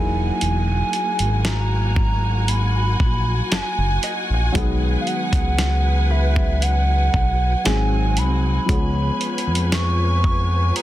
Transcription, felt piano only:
Already playing: F#3 A#3 D#4 E4 G#4
4.52 F#3 G#3 B3
4.58 D#3 G#4
7.64 F#3 G#3 C4 D#4 G#4
8.66 F3 G#3 B3
8.72 C#4 G#4

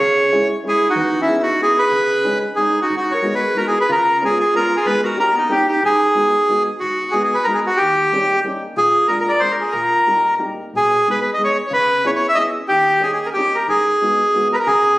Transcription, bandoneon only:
Already playing: C#5
0.68 G#4
0.90 F#4
1.22 E4
1.43 F#4
1.63 G#4
1.79 B4
2.56 G#4
2.82 F#4
2.97 F#4
3.11 C#5
3.35 B4
3.57 A#4
3.68 G#4
3.81 B4
3.92 A#4
4.25 G#4
4.40 G#4
4.56 A#4
4.77 G#4
4.86 B4
5.05 A#4
5.20 A#4
5.38 D#4
5.51 G4
5.68 G4
5.85 G#4
6.80 F#4
7.11 G#4
7.24 G#4
7.34 B4
7.44 A#4
7.54 G#4
7.67 F#4
7.77 G4
8.77 G#4
9.08 A#4
9.20 A#4
9.29 D5
9.40 C5
9.51 A#4
9.61 G#4
9.72 A#4
10.77 G#4
11.11 B4
11.21 B4
11.34 D#5
11.44 C#5
11.67 C#5
11.73 B4
12.06 C#5
12.16 C#5
12.29 E5
12.35 D#5
12.68 G4
13.03 G#4
13.13 G#4
13.26 A#4
13.33 G4
13.55 A#4
13.69 G#4
14.53 A#4 B4
14.60 A#4
14.67 G#4

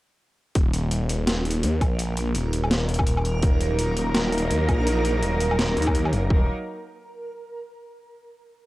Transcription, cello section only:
3.43 F#3 A#3 D#4 A#4
6.30 F#3 A#3 D#4 A#4

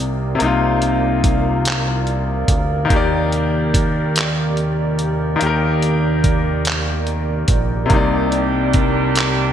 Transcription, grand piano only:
Already playing: C3 A#3 D#4 D5
0.35 C3 A#3
0.42 D#4 F4
2.85 D#3 A#3
2.92 G4 D5
5.36 D#3 A#3
5.43 G4 A#4
7.86 C3 A#3
7.93 D#4 D5

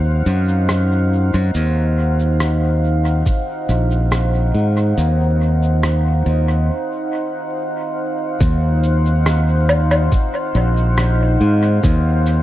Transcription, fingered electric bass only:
Already playing: D#2
0.26 F#2
1.34 F#2
1.55 D#2
3.69 A#1
4.54 G#2
4.98 D#2
6.26 D#2
8.40 D#2
10.55 A#1
11.41 G#2
11.83 D#2

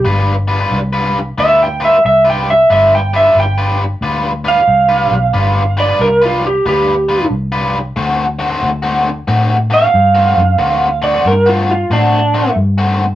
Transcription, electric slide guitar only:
1.40 E5
1.63 G5
1.85 E5
2.06 E5
2.30 G5
2.50 E5
2.72 E5
2.95 G5
3.16 E5
3.40 G5
4.48 F5
5.80 D5
6.01 A#4
6.25 F4
6.47 G4
6.69 G4
9.74 F5
11.04 D5
11.27 A#4
11.49 F4
11.71 F4
11.93 D4

